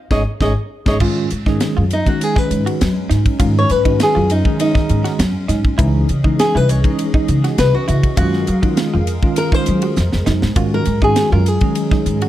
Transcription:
0.11 upright bass G#1, tine electric piano G#3 C#4 D#4, nylon-string guitar G#4 C#5 D#5, kick, snare
0.41 upright bass G#1, tine electric piano G#3 C#4 D#4, nylon-string guitar G#4 C#5 D#5, kick, snare
0.86 upright bass G#1, tine electric piano G#3 C#4 D#4, nylon-string guitar G#4 C#5 D#5, kick, snare
1.00 upright bass G#2, tine electric piano D#3 G#3 C#4 F4, analog synth pad F#3 G#3 C#4, clean electric guitar F4, kick, crash
1.30 upright bass G#2, hi-hat pedal, ride
1.46 tine electric piano D#3 G#3 C#4 G#4, clean electric guitar D#4, kick, snare
1.60 snare, hi-hat pedal, ride
1.77 upright bass F#2, clean electric guitar F4
1.90 nylon-string guitar D#4, hi-hat pedal, ride
2.06 tine electric piano D#3 G#3 C#4 D#4, nylon-string guitar F#4, kick, ride
2.21 nylon-string guitar G#4, hi-hat pedal, ride
2.36 clean electric guitar D#4, nylon-string guitar B4, muted upright bass stroke, kick, snare
2.51 upright bass G#2, hi-hat pedal, ride
2.66 clean electric guitar F#4, ride
2.81 upright bass F#2, snare, hi-hat pedal, ride
3.10 upright bass G#2, clean electric guitar D#4, snare, hi-hat pedal, ride
3.26 kick, ride
3.39 upright bass G#2, tine electric piano D#3 G#3 C#4 D#4, clean electric guitar F4, kick, hi-hat pedal, ride
3.59 nylon-string guitar C#5
3.70 upright bass G#2, nylon-string guitar B4, hi-hat pedal, ride
3.85 tine electric piano D#3 G#3 C#4 F#4, clean electric guitar D#4, kick, ride
4.00 nylon-string guitar G#4, snare, hi-hat pedal, ride
4.15 upright bass F#2, clean electric guitar F4
4.30 nylon-string guitar D#4, hi-hat pedal, ride
4.45 tine electric piano D#3 G#3 C#4 G#4, kick
4.60 nylon-string guitar D#4, hi-hat pedal, ride
4.75 clean electric guitar D#4, muted upright bass stroke, kick, snare
4.89 upright bass G#2, hi-hat pedal, ride
5.04 clean electric guitar F#4, snare, ride
5.19 upright bass F#2, snare, hi-hat pedal, ride
5.48 upright bass G#2, clean electric guitar D#4, snare, hi-hat pedal, ride
5.65 kick
5.77 upright bass C#2, analog synth pad E3 G#4 D#5, tine electric piano E3 G#3 C#4 D#4, clean electric guitar E4, kick, hi-hat pedal, ride
6.09 upright bass C#3, hi-hat pedal, ride
6.24 tine electric piano E3 G#3 C#4 D#4, clean electric guitar D#4, kick
6.39 nylon-string guitar G#4, snare, hi-hat pedal, ride
6.55 upright bass C2, clean electric guitar E4, nylon-string guitar B4
6.69 nylon-string guitar C#5, hi-hat pedal, ride
6.83 tine electric piano E3 G#3 C#4 D#4, kick, ride
6.99 hi-hat pedal, ride
7.14 clean electric guitar D#4, muted upright bass stroke, kick
7.28 upright bass C#3, hi-hat pedal, ride
7.44 clean electric guitar F#4, snare, ride
7.58 upright bass C2, nylon-string guitar B4, snare, hi-hat pedal, ride
7.75 nylon-string guitar F#4
7.88 upright bass C#3, clean electric guitar E4, nylon-string guitar F#4, hi-hat pedal, ride
8.03 kick, ride
8.15 upright bass F#2, tine electric piano D#3 G#3 C#4 F4, analog synth pad G#3 G#4 A#4 F5, nylon-string guitar F#4, clean electric guitar F5, kick, hi-hat pedal, ride
8.33 snare
8.47 upright bass F#3, hi-hat pedal, ride
8.62 tine electric piano D#3 G#3 C#4 F4, clean electric guitar D#4, kick, ride
8.77 snare, hi-hat pedal, ride
8.94 upright bass F2, clean electric guitar F4
9.07 hi-hat pedal, ride
9.22 tine electric piano D#3 G#3 C#4 F4, kick
9.36 nylon-string guitar A#4, hi-hat pedal, ride
9.52 clean electric guitar D#4, nylon-string guitar C5, muted upright bass stroke, kick
9.66 upright bass F#3, hi-hat pedal, ride
9.82 clean electric guitar F#4, ride
9.96 upright bass F2, snare, hi-hat pedal
10.12 upright bass F2, snare
10.26 upright bass F#2, clean electric guitar D#4, snare, hi-hat pedal
10.42 upright bass G#2, snare
10.56 upright bass G#2, tine electric piano D#3 G#3 C#4 F#4, analog synth pad F#3 G#3 C#4, clean electric guitar F4, kick, hi-hat pedal, ride
10.74 nylon-string guitar A#4
10.85 upright bass G#2, hi-hat pedal, ride
11.01 tine electric piano D#3 G#3 C#4 F#4, clean electric guitar D#4, nylon-string guitar G#4, kick
11.16 snare, hi-hat pedal, ride
11.32 upright bass F#2, clean electric guitar F4, nylon-string guitar A#4
11.46 nylon-string guitar G#4, hi-hat pedal, ride
11.61 tine electric piano D#3 G#3 C#4 G#4, kick, ride
11.75 hi-hat pedal, ride
11.91 clean electric guitar D#4, muted upright bass stroke, kick, snare
12.06 upright bass G#2, hi-hat pedal, ride
12.21 clean electric guitar F#4, ride

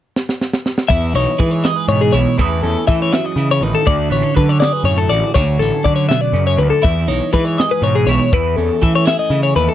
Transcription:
0.16 snare
0.29 snare
0.41 snare
0.53 snare
0.66 snare
0.78 snare
0.89 picked electric bass E2, clean electric guitar E3 E4 E5, kick, closed hi-hat
1.14 picked electric bass B1, clean electric guitar D#4 C#5, closed hi-hat
1.39 picked electric bass E3, clean electric guitar G#3 B4, kick, closed hi-hat
1.51 clean electric guitar C#5
1.64 clean electric guitar G#4 D#5, snare, closed hi-hat
1.76 clean electric guitar B4
1.88 picked electric bass G#2, clean electric guitar B2 C#5, closed hi-hat
2.01 clean electric guitar G#4
2.13 picked electric bass B1, clean electric guitar E4 C#5, closed hi-hat
2.38 picked electric bass E2, clean electric guitar E3 A3 C#4 E4 G#4 B4, kick, closed hi-hat
2.63 picked electric bass E2, clean electric guitar C#4 A4, closed hi-hat
2.88 picked electric bass E3, clean electric guitar A3 E5, kick, closed hi-hat
3.02 clean electric guitar C#5
3.12 clean electric guitar F#3 E5, snare, closed hi-hat
3.26 clean electric guitar D#5
3.36 picked electric bass C#3, clean electric guitar E3, closed hi-hat
3.51 clean electric guitar C#5
3.61 picked electric bass A1, clean electric guitar D#3 B4, closed hi-hat
3.75 clean electric guitar A4
3.86 picked electric bass D2, clean electric guitar D3 F#4 D5, kick, closed hi-hat
4.10 picked electric bass A1, clean electric guitar B3 C#5, closed hi-hat
4.23 clean electric guitar C#4
4.35 picked electric bass D3, clean electric guitar F#3 B4, kick, closed hi-hat
4.49 clean electric guitar C#5
4.60 clean electric guitar G#4 D5, snare, closed hi-hat
4.73 clean electric guitar B4
4.84 picked electric bass F#2, clean electric guitar A2 C#5, closed hi-hat
4.98 clean electric guitar A4
5.10 picked electric bass A1, clean electric guitar F#4 D5, closed hi-hat
5.35 picked electric bass D2, clean electric guitar D3 F#4 C#5, kick, closed hi-hat
5.58 picked electric bass A1, clean electric guitar C#4 A4, closed hi-hat
5.84 picked electric bass D3, clean electric guitar F#3 D5, kick, closed hi-hat
5.96 clean electric guitar C#5
6.09 clean electric guitar B2 E5, snare, closed hi-hat
6.21 clean electric guitar D5
6.33 picked electric bass F#2, clean electric guitar C#3, closed hi-hat
6.47 clean electric guitar C#5
6.57 picked electric bass D2, clean electric guitar D3 B4, closed hi-hat
6.70 clean electric guitar A4
6.82 picked electric bass E2, clean electric guitar E3 E4 E5, kick, closed hi-hat
7.08 picked electric bass B1, clean electric guitar D#4 C#5, closed hi-hat
7.33 picked electric bass E3, clean electric guitar G#3 B4, kick, closed hi-hat
7.45 clean electric guitar C#5
7.58 clean electric guitar G#4 D#5, snare, closed hi-hat
7.71 clean electric guitar B4
7.82 picked electric bass G#2, clean electric guitar B2 C#5, closed hi-hat
7.95 clean electric guitar G#4
8.06 picked electric bass B1, clean electric guitar E4 C#5, closed hi-hat
8.33 picked electric bass E2, clean electric guitar E3 E4 B4, kick, closed hi-hat
8.56 picked electric bass E2, clean electric guitar C#4 A4, closed hi-hat
8.82 picked electric bass E3, clean electric guitar A3 E5, kick, closed hi-hat
8.95 clean electric guitar C#5
9.06 clean electric guitar G#4 E5, snare, closed hi-hat
9.19 clean electric guitar D#5
9.30 picked electric bass C#3, clean electric guitar E3, closed hi-hat
9.43 clean electric guitar C#5
9.56 picked electric bass D#2, clean electric guitar E4 B4, closed hi-hat
9.69 clean electric guitar A4

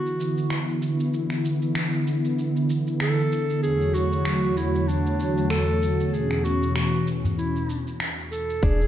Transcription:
Already playing: analog synth pad D3 E3 B3 E4, clarinet F#4
0.06 shaker
0.20 shaker
0.38 shaker
0.50 finger snap, shaker
0.69 shaker
0.82 shaker
1.00 shaker
1.14 shaker
1.30 finger snap, shaker
1.45 shaker
1.62 shaker
1.75 finger snap, shaker
1.94 shaker
2.07 shaker
2.25 shaker
2.39 shaker
2.56 shaker
2.70 shaker
2.87 shaker
3.00 clarinet A4, finger snap, shaker
3.19 shaker
3.33 shaker
3.50 shaker
3.63 analog synth pad E2 F#3 A3 F#4 C#5, clarinet G#4, shaker
3.81 shaker
3.94 clarinet F#4, shaker
4.12 shaker
4.25 finger snap, shaker
4.44 shaker
4.57 clarinet E4, shaker
4.75 shaker
4.88 clarinet D4, shaker
5.06 shaker
5.20 shaker
5.38 shaker
5.50 clarinet A4, finger snap, shaker
5.69 shaker
5.82 shaker
6.00 shaker
6.06 clarinet A4
6.13 analog synth pad B2 E3 C#4, clarinet G#4, shaker
6.31 finger snap, shaker
6.44 clarinet F#4, shaker
6.63 shaker
6.75 clarinet F#4, finger snap, shaker
6.94 shaker
7.07 shaker
7.24 udu, shaker
7.38 clarinet E4, shaker
7.56 shaker
7.70 shaker
7.87 shaker
8.00 finger snap, shaker
8.19 shaker
8.32 clarinet A4, shaker
8.50 shaker
8.63 sub bass E1, nylon-string guitar D4, clarinet G#4, kick, shaker
8.81 shaker

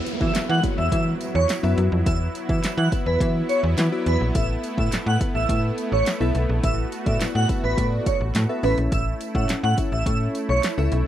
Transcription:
Already playing: supersaw synth F#3 B3 E4, downlifter
0.06 closed hi-hat, tambourine
0.20 fm bass E3, synth keys B3 E4 F#4 B4 E5, digital synth lead E5, kick
0.35 fm bass E3, snare, clap, closed hi-hat, tambourine
0.49 fm bass E3, digital synth lead F#5
0.63 synth keys B3 E4 F#4 B4 C#5, kick, closed hi-hat, tambourine
0.78 fm bass E2, digital synth lead E5
0.92 fm bass E3, synth keys B3 E4 F#4 B4 E5, digital synth lead E5, kick, closed hi-hat
1.21 closed hi-hat, tambourine
1.35 fm bass E2, digital synth lead C#5
1.49 snare, clap, closed hi-hat, tambourine
1.63 fm bass F#2, synth keys B3 E4 F#4 B4 E5
1.78 fm bass F#2, closed hi-hat
1.92 fm bass F2
2.06 fm bass E2, synth keys B3 E4 F#4 B4 E5, digital synth lead E5, kick, closed hi-hat, tambourine
2.35 closed hi-hat, tambourine
2.49 fm bass E3, synth keys B3 E4 F#4 B4 E5, digital synth lead E5, kick
2.63 fm bass E3, snare, clap, closed hi-hat, tambourine
2.77 fm bass E3, digital synth lead F#5
2.92 synth keys B3 E4 F#4 B4 E5, kick, closed hi-hat, tambourine
3.06 fm bass E2, digital synth lead B4
3.20 fm bass E3, synth keys B3 E4 F#4 B4 E5, kick, closed hi-hat, tambourine
3.49 digital synth lead C#5, closed hi-hat, tambourine
3.63 fm bass E2
3.77 fm bass E3, snare, clap, closed hi-hat, tambourine
3.92 synth keys B3 E4 F#4 B4 D5
4.06 fm bass E2, digital synth lead B4, closed hi-hat
4.21 fm bass A#1
4.35 fm bass A1, supersaw synth A3, synth keys B3 E4 A4 B4 E5, digital synth lead E5, kick, closed hi-hat, tambourine
4.63 closed hi-hat, tambourine
4.77 fm bass A2, synth keys B3 E4 A4 B4 E5, digital synth lead E5, kick
4.92 snare, clap, closed hi-hat, tambourine
5.06 fm bass A2, digital synth lead F#5
5.21 synth keys B3 E4 A4 B4 F#5, kick, closed hi-hat, tambourine
5.35 fm bass A1, digital synth lead E5
5.49 fm bass A2, synth keys B3 E4 A4 B4 E5, digital synth lead E5, kick, closed hi-hat, tambourine
5.78 closed hi-hat, tambourine
5.92 fm bass A1, digital synth lead C#5
6.06 snare, clap, closed hi-hat, tambourine
6.20 fm bass B1, synth keys B3 E4 A4 B4 E5
6.35 fm bass B1, closed hi-hat, tambourine
6.49 fm bass A#1
6.63 fm bass A1, synth keys B3 E4 A4 B4 E5, supersaw synth F#4, digital synth lead E5, kick, closed hi-hat, tambourine
6.92 closed hi-hat, tambourine
7.06 fm bass A2, synth keys B3 E4 A4 B4 D5, digital synth lead E5, kick, closed hi-hat
7.20 snare, clap, closed hi-hat, tambourine
7.35 fm bass A2, digital synth lead F#5
7.49 synth keys B3 E4 A4 B4 E5, kick, closed hi-hat, tambourine
7.64 fm bass A1, digital synth lead B4
7.77 fm bass A2, synth keys B3 E4 A4 B4 D5, kick, closed hi-hat, tambourine
8.06 digital synth lead C#5, kick, closed hi-hat, tambourine
8.21 fm bass A1
8.35 fm bass A2, snare, clap, closed hi-hat, tambourine
8.49 synth keys B3 E4 A4 B4 E5
8.63 fm bass A1, supersaw synth A3 E4, synth keys C#4 E4 A4 C#5 E5, digital synth lead B4, open hi-hat, tambourine
8.78 fm bass A#1, closed hi-hat
8.92 fm bass A1, digital synth lead E5, kick, closed hi-hat, tambourine
9.21 closed hi-hat, tambourine
9.34 fm bass A2, synth keys C#4 E4 A4 C#5 F#5, digital synth lead E5, kick
9.49 fm bass A2, snare, clap, closed hi-hat, tambourine
9.63 fm bass A2, digital synth lead F#5
9.78 synth keys C#4 E4 A4 C#5 E5, kick, closed hi-hat, tambourine
9.91 fm bass A1, digital synth lead E5
10.06 fm bass A2, synth keys C#4 E4 A4 C#5 E5, digital synth lead E5, kick, closed hi-hat
10.35 closed hi-hat, tambourine
10.49 fm bass B1, digital synth lead C#5
10.63 snare, clap, closed hi-hat, tambourine
10.78 fm bass C#2, synth keys C#4 E4 A4 C#5 E5
10.92 fm bass B1, closed hi-hat, tambourine

